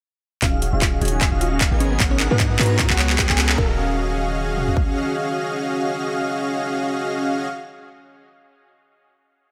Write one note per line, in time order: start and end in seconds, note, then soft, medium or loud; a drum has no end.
0.42 0.71 D#1 loud
0.42 1.79 D#3 medium
0.42 3.55 F#3 medium
0.42 1.79 C#4 medium
0.42 0.70 C#4 medium
0.42 0.49 C#4 loud
0.42 0.74 F4 medium
0.42 0.70 F#4 medium
0.42 0.70 G#4 medium
0.42 1.79 G#4 medium
0.42 0.70 D#5 medium
0.42 1.79 F5 medium
0.42 0.70 F5 loud
0.42 0.74 F5 loud
0.42 kick loud
0.42 clap soft
0.42 closed hi-hat medium
0.42 riser medium
0.53 0.57 D#4 medium
0.62 0.67 G#4 medium
0.62 closed hi-hat medium
0.73 1.00 D#1 medium
0.73 0.99 C#4 medium
0.73 0.77 D#4 medium
0.73 0.99 F#4 medium
0.73 0.99 G#4 medium
0.73 0.99 D#5 medium
0.73 0.99 F5 medium
0.82 1.14 F4 medium
0.82 1.14 F5 medium
0.82 kick medium
0.82 clap medium
0.82 closed hi-hat medium
0.93 0.95 C#4 medium
1.01 1.30 D#1 medium
1.01 1.30 C#4 loud
1.01 1.08 C#4 loud
1.01 1.30 F#4 medium
1.01 1.30 G#4 medium
1.01 1.30 D#5 medium
1.01 1.30 G#5 loud
1.01 closed hi-hat medium
1.05 closed hi-hat medium
1.08 closed hi-hat medium
1.12 1.16 D#4 medium
1.21 1.37 F4 medium
1.21 1.37 F5 medium
1.21 kick loud
1.21 clap medium
1.21 closed hi-hat medium
1.32 1.69 D#1 loud
1.32 1.69 C#4 medium
1.32 1.36 D#4 medium
1.32 1.69 F#4 medium
1.32 1.69 G#4 medium
1.32 1.69 D#5 medium
1.32 1.69 F5 medium
1.41 1.57 F4 medium
1.41 1.46 F#4 medium
1.41 1.57 F5 medium
1.41 closed hi-hat medium
1.52 1.54 C#4 medium
1.61 1.68 C#4 loud
1.61 kick loud
1.61 clap medium
1.61 closed hi-hat medium
1.72 1.98 G#1 loud
1.72 1.98 B3 medium
1.72 1.75 D#4 medium
1.72 1.98 G#4 medium
1.72 1.98 A#4 medium
1.72 1.98 D#5 medium
1.72 1.98 G#5 medium
1.80 3.56 G#3 medium
1.80 2.04 C#4 medium
1.80 2.78 A#4 medium
1.80 2.78 B4 medium
1.80 1.85 B4 medium
1.80 2.04 C#5 medium
1.80 closed hi-hat medium
1.91 1.95 F#4 medium
2.00 2.29 G#1 loud
2.00 2.28 B3 loud
2.00 2.28 G#4 medium
2.00 2.28 A#4 medium
2.00 2.05 A#4 medium
2.00 2.28 D#5 medium
2.00 2.28 F#5 loud
2.00 kick loud
2.00 clap medium
2.00 closed hi-hat medium
2.11 2.26 C#4 medium
2.11 2.13 D#4 medium
2.11 2.26 C#5 medium
2.20 2.27 D#4 loud
2.20 clap medium
2.20 closed hi-hat medium
2.31 2.58 G#2 medium
2.31 2.54 B3 medium
2.31 2.57 B3 medium
2.31 2.35 F#4 medium
2.31 2.57 G#4 medium
2.31 2.57 A#4 medium
2.31 2.54 B4 medium
2.31 2.57 D#5 medium
2.31 2.57 F#5 medium
2.40 2.44 B4 medium
2.40 kick loud
2.40 clap medium
2.40 closed hi-hat medium
2.51 2.54 F#4 medium
2.59 2.88 G#2 loud
2.59 3.51 B3 medium
2.59 2.87 B3 loud
2.59 2.87 F#4 medium
2.59 2.87 G#4 medium
2.59 2.64 A#4 medium
2.59 3.51 B4 medium
2.59 2.87 C#5 medium
2.59 2.87 A#5 loud
2.59 clap medium
2.59 closed hi-hat medium
2.63 closed hi-hat medium
2.66 closed hi-hat medium
2.70 2.73 D#4 medium
2.79 3.57 C#3 medium
2.79 3.57 B3 medium
2.79 2.86 C#4 loud
2.79 kick loud
2.79 clap medium
2.79 closed hi-hat medium
2.90 3.27 C#2 loud
2.90 3.27 B3 medium
2.90 3.27 F#4 medium
2.90 2.94 F#4 medium
2.90 3.27 G#4 medium
2.90 3.27 C#5 medium
2.90 3.27 F#5 medium
2.90 clap medium
2.99 3.03 C#5 medium
2.99 clap loud
2.99 closed hi-hat medium
3.10 3.14 F#4 medium
3.10 clap medium
3.19 3.23 B4 medium
3.19 kick loud
3.19 clap loud
3.19 closed hi-hat medium
3.29 3.56 C#2 loud
3.29 3.56 B3 medium
3.29 3.32 C#4 medium
3.29 3.56 F#4 medium
3.29 3.56 G#4 medium
3.29 3.56 C#5 medium
3.29 3.56 G#5 medium
3.29 3.56 G#5 loud
3.29 clap medium
3.38 3.45 C#4 loud
3.38 clap loud
3.38 closed hi-hat medium
3.49 3.53 F#4 medium
3.49 clap medium
3.58 4.73 D#1 loud
3.58 7.47 D#3 medium
3.58 7.46 C#4 medium
3.58 3.76 C#4 medium
3.58 7.47 C#4 medium
3.58 7.46 F#4 medium
3.58 7.47 F#4 medium
3.58 7.46 G#4 medium
3.58 7.47 G#4 medium
3.58 7.46 A#4 loud
3.58 7.46 D#5 medium
3.58 7.46 F5 medium
3.58 7.47 F5 medium
3.58 7.47 F5 loud
3.58 kick loud
4.57 mid tom medium
4.68 floor tom medium
4.77 kick loud